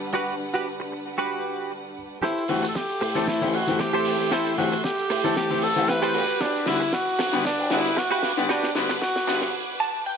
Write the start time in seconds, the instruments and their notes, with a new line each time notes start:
Already playing: grand piano D3 G3 B3 F#5, string section G3 D4 B4 F#5
0.14 clean electric guitar F#4 G4 B4
0.54 clean electric guitar F#4 G4 B4
0.80 muted clean electric guitar stroke
0.92 muted clean electric guitar stroke
1.18 clean electric guitar F#4 G4 B4
2.22 fingered electric bass A1, tenor saxophone E4, clean electric guitar G4 A4 C5, string section A4 E5 G5 C6, kick, snare, shaker
2.38 shaker
2.48 fingered electric bass G1, grand piano E3 A3 C4 G4, tenor saxophone F#4, open hi-hat
2.63 muted clean electric guitar stroke, shaker
2.68 tenor saxophone A4
2.75 tenor saxophone G4, muted clean electric guitar stroke, kick, snare, shaker
2.90 shaker
3.01 fingered electric bass A2, muted clean electric guitar stroke, open hi-hat
3.15 grand piano E3 A3 C4 A4, muted clean electric guitar stroke, shaker
3.27 tenor saxophone E4, kick, snare, shaker
3.41 fingered electric bass A1, grand piano E3 A3 C4 G4, shaker
3.54 tenor saxophone F#4, open hi-hat
3.67 fingered electric bass A1, grand piano E3 A3 C4 G4, shaker
3.79 tenor saxophone G4, muted clean electric guitar stroke, kick, snare, shaker
3.93 fingered electric bass A2, clean electric guitar G4 A4 C5, shaker
4.05 open hi-hat
4.20 fingered electric bass A1, shaker
4.31 tenor saxophone E4, clean electric guitar G4 A4 C5, kick, snare, shaker
4.46 shaker
4.58 fingered electric bass G1, grand piano E3 A3 C4 G4, tenor saxophone F#4, open hi-hat
4.72 muted clean electric guitar stroke, shaker
4.84 tenor saxophone G4, muted clean electric guitar stroke, kick, snare, shaker
4.98 shaker
5.10 fingered electric bass A2, muted clean electric guitar stroke, open hi-hat
5.24 grand piano E3 A3 C4 A4, muted clean electric guitar stroke, shaker
5.36 fingered electric bass A1, tenor saxophone G4, kick, snare, shaker
5.50 grand piano E3 A3 C4 G4, shaker
5.62 fingered electric bass A1, tenor saxophone A4, open hi-hat
5.76 fingered electric bass A1, grand piano E3 A3 C4 G4, shaker
5.88 fingered electric bass A1, tenor saxophone B4, muted clean electric guitar stroke, kick, snare, shaker
6.02 clean electric guitar G4 A4 C5, shaker
6.14 fingered electric bass G1, clean electric guitar F#4 G4 B4, string section B4 F#5 D6, open hi-hat
6.29 shaker
6.40 fingered electric bass G1, tenor saxophone D4, kick, snare, shaker
6.55 shaker
6.66 fingered electric bass D2, grand piano D3 G3 B3 F#4, tenor saxophone E4, snare, open hi-hat
6.80 muted clean electric guitar stroke, shaker
6.93 tenor saxophone F#4, muted clean electric guitar stroke, kick, snare, shaker
7.08 shaker
7.19 fingered electric bass G2, muted clean electric guitar stroke, snare, open hi-hat
7.33 grand piano D3 G3 B3 G4, muted clean electric guitar stroke, shaker
7.45 tenor saxophone D4, kick, snare, shaker
7.59 fingered electric bass G1, shaker
7.70 grand piano D3 G3 B3 F#4, tenor saxophone E4, snare, open hi-hat
7.85 fingered electric bass G1, shaker
7.97 tenor saxophone F#4, muted clean electric guitar stroke, kick, snare, shaker
8.11 fingered electric bass G2, clean electric guitar F#4 G4 B4, shaker
8.23 snare, open hi-hat
8.37 fingered electric bass G1, grand piano D3 G3 B3 G4, shaker
8.49 tenor saxophone D4, clean electric guitar F#4 G4 B4, kick, snare, shaker
8.63 snare, shaker
8.75 fingered electric bass D2, grand piano D3 G3 B3 F#4, snare, open hi-hat
8.89 muted clean electric guitar stroke, snare, shaker
9.01 tenor saxophone F#4, muted clean electric guitar stroke, kick, snare, shaker
9.16 snare, shaker
9.27 fingered electric bass G2, grand piano D3 G3 B3 F#4, muted clean electric guitar stroke, snare, open hi-hat
9.42 muted clean electric guitar stroke, snare, shaker
9.80 clean electric guitar A5
10.06 clean electric guitar G5